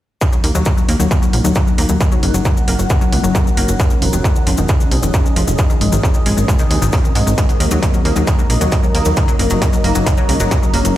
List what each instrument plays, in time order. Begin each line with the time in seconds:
0.21 synth pluck D#3, kick, cabasa
0.33 synth pluck F#3, cabasa
0.44 analog synth bass D#2, synth pluck A#3, open hi-hat
0.55 analog synth bass D#2, synth pluck F#3, cabasa
0.65 synth pluck D#3, kick, cabasa
0.77 synth pluck F#3, cabasa
0.88 analog synth bass D#2, synth pluck A#3, open hi-hat
1.00 analog synth bass D#2, synth pluck F#3, cabasa
1.11 synth pluck D#3, kick, cabasa
1.22 synth pluck F#3, cabasa
1.33 analog synth bass A#1, synth pluck A#3, open hi-hat
1.44 analog synth bass D#2, synth pluck F#3, cabasa
1.55 synth pluck D#3, kick, cabasa
1.67 synth pluck F#3, cabasa
1.78 analog synth bass D#2, synth pluck A#3, open hi-hat
1.89 analog synth bass D#2, synth pluck F#3, cabasa
2.00 synth pluck C#3, kick, cabasa
2.12 synth pluck F#3, cabasa
2.23 analog synth bass F#1, synth pluck A#3, open hi-hat
2.34 analog synth bass F#1, synth pluck F#3, cabasa
2.45 synth pluck C#3, kick, cabasa
2.57 synth pluck F#3, cabasa
2.68 analog synth bass F#1, synth pluck A#3, open hi-hat
2.79 analog synth bass F#1, synth pluck F#3, cabasa
2.90 synth pluck C#3, kick, cabasa
3.01 synth pluck F#3, cabasa
3.12 analog synth bass C#2, synth pluck A#3, open hi-hat
3.24 analog synth bass F#1, synth pluck F#3, cabasa
3.35 synth pluck C#3, kick, cabasa
3.46 synth pluck F#3, cabasa
3.57 analog synth bass F#1, synth pluck A#3, open hi-hat
3.68 analog synth bass F#1, synth pluck F#3, cabasa
3.79 synth pluck C#3, kick, cabasa
3.90 synth pluck D#3, cabasa
4.02 analog synth bass F1, synth pluck F3, open hi-hat
4.13 analog synth bass F1, synth pluck D#3, cabasa
4.24 synth pluck C#3, kick, cabasa
4.36 synth pluck D#3, cabasa
4.47 analog synth bass F1, synth pluck F3, open hi-hat
4.57 analog synth bass F1, synth pluck D#3, cabasa
4.68 synth pluck C#3, kick, cabasa
4.80 synth pluck D#3, cabasa
4.91 analog synth bass C2, synth pluck F3, open hi-hat
5.03 analog synth bass F1, synth pluck D#3, cabasa
5.14 synth pluck C#3, kick, cabasa
5.25 synth pluck D#3, cabasa
5.36 analog synth bass F1, synth pluck F3, open hi-hat
5.47 analog synth bass F1, synth pluck D#3, cabasa
5.58 synth pluck C3, kick, cabasa
5.70 synth pluck D#3, cabasa
5.81 analog synth bass G#1, synth pluck G#3, open hi-hat
5.92 analog synth bass G#1, synth pluck D#3, cabasa
6.03 synth pluck C3, kick, cabasa
6.14 synth pluck D#3, cabasa
6.26 analog synth bass G#1, synth pluck G#3, open hi-hat
6.37 analog synth bass G#1, synth pluck D#3, cabasa
6.48 synth pluck C3, kick, cabasa
6.59 synth pluck D#3, cabasa
6.71 analog synth bass D#2, synth pluck G#3, open hi-hat
6.82 analog synth bass G#1, synth pluck D#3, cabasa
6.93 synth pluck C3, kick, open hi-hat, cabasa
7.04 synth pluck D#3, cabasa
7.15 analog synth bass G#2, synth pluck G#3, open hi-hat
7.27 analog synth bass G#1, synth pluck D#3, cabasa
7.38 synth pluck D#3, kick, closed hi-hat, cabasa
7.49 synth pluck F#3, closed hi-hat, cabasa
7.60 analog synth bass D#2, synth pluck A#3, open hi-hat
7.71 analog synth bass D#2, synth pluck F#3, closed hi-hat, cabasa
7.82 synth pluck D#3, kick, closed hi-hat, cabasa
7.94 synth pluck F#3, cabasa
8.05 analog synth bass D#2, synth pluck A#3, open hi-hat
8.16 analog synth bass D#2, synth pluck F#3, closed hi-hat, cabasa
8.27 synth pluck D#3, kick, closed hi-hat, cabasa
8.39 synth pluck F#3, cabasa
8.50 analog synth bass A#1, synth pluck A#3, open hi-hat
8.61 analog synth bass D#2, synth pluck F#3, closed hi-hat, cabasa
8.72 synth pluck D#3, kick, closed hi-hat, cabasa
8.83 synth pluck F#3, cabasa
8.94 analog synth bass D#2, synth pluck A#3, open hi-hat
9.05 analog synth bass D#2, synth pluck F#3, closed hi-hat, cabasa
9.16 synth pluck C#3, kick, closed hi-hat, cabasa
9.28 synth pluck F#3, closed hi-hat, cabasa
9.39 analog synth bass F#1, synth pluck A#3, open hi-hat
9.50 analog synth bass F#1, synth pluck F#3, closed hi-hat, cabasa
9.62 synth pluck C#3, kick, closed hi-hat, cabasa
9.73 synth pluck F#3, cabasa
9.84 analog synth bass F#1, synth pluck A#3, open hi-hat
9.95 analog synth bass F#1, synth pluck F#3, closed hi-hat, cabasa
10.06 synth pluck C#3, kick, closed hi-hat, cabasa
10.17 synth pluck F#3, cabasa
10.29 analog synth bass C#2, synth pluck A#3, open hi-hat
10.40 analog synth bass F#1, synth pluck F#3, closed hi-hat, cabasa
10.51 synth pluck C#3, kick, closed hi-hat, cabasa
10.63 synth pluck F#3, cabasa
10.74 analog synth bass F#1, synth pluck A#3, open hi-hat
10.85 analog synth bass F#1, synth pluck F#3, closed hi-hat, cabasa